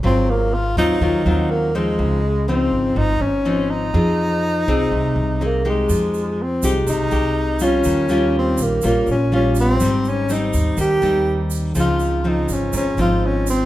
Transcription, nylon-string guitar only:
\new Staff \with { instrumentName = "Nylon-string guitar" } { \time 4/4 \key f \minor \tempo 4 = 123 << { <ges c' f'>4 r8 <ges c' f'>8 <ges c' f'>8 <ges c' f'>4 <f c' ees'>8~ | <f c' ees'>8 r8 <f c' ees'>4. r8 <f c' ees'>4 | <c' ees' aes'>4. <c' ees' aes'>4. <c' ees' aes'>8 <aes ees' g'>8~ | <aes ees' g'>4 r8 <aes ees' g'>4 <aes ees' g'>4 <g des' f'>8~ |
<g des' f'>8 <g des' f'>4. <g des' f'>8 r8 <g des' f'>4 | <g c' ees'>4 <g c' ees'>4. <g c' ees'>4. | <f c' ees'>4 <f c' ees'>4. <f c' ees'>4. | } \\ { aes,2 ees2 | des2 aes,2 | f2 c2 | f2 c2 |
ees2 bes,2 | aes,2 ees2 | des2 aes,2 | } >> }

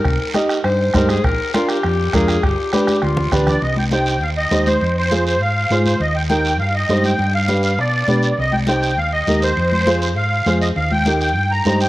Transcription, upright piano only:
\new Staff \with { instrumentName = "Upright piano" } { \time 4/4 \key c \minor \tempo 4 = 202 r4 <ees' g' ees''>8 r4. <ees' g' c''>8 r8 | r4 <d' f' bes'>8 r4. <d' f' bes'>8 r8 | r4 <d' g' b'>8 r4. <d' g' b'>8 r8 | r4 <ees' g' c''>8 r4. <ees' g' c''>8 r8 |
r4 <f' aes' c''>8 r4. <f' aes' c''>8 r8 | r4 <ees' g' bes'>8 r4. <ees' g' c''>8 r8 | r4 <d' g' b'>8 r4. <d' g' b'>8 r8 | r4 <ees' g' c''>8 r4. <ees' g' bes'>8 r8 |
r4 <f' aes' c''>8 r4. <f' aes' c''>8 r8 | r4 <ees' g' bes'>8 r4. <ees' g' c''>8 r8 | }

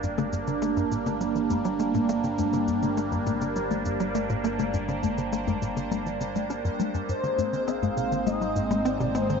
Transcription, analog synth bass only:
\new Staff \with { instrumentName = "Analog synth bass" } { \clef bass \time 4/4 \key g \phrygian \tempo 4 = 102 g,16 d16 g,16 d16 bes16 g,16 bes,16 d16 g16 f16 g,16 g16 bes16 bes,16 bes16 d16 | g,16 d16 g,16 d16 bes16 g,16 bes,16 d16 g16 f16 g,16 g16 bes16 bes,16 bes16 d16 | g,16 d16 g,16 d16 bes16 g,16 bes,16 d16 g16 f16 d16 g16 d'16 g,16 g16 g,16 | aes,16 ees16 aes,16 ees16 c'16 aes,16 c16 ees16 aes16 g16 aes,16 aes16 c'16 c16 c'16 ees16 | }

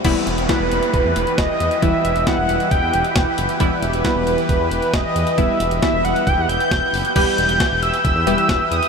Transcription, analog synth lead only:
\new Staff \with { instrumentName = "Analog synth lead" } { \time 4/4 \key e \minor \tempo 4 = 135 r4 b'4 b'4 dis''4 | e''4 fis''4 g''4. r8 | r4 b'4 b'4 dis''4 | e''4 e''8 fis''8 g''8 g'''4. |
g'''4. e'''8 e'''4. dis'''8 | }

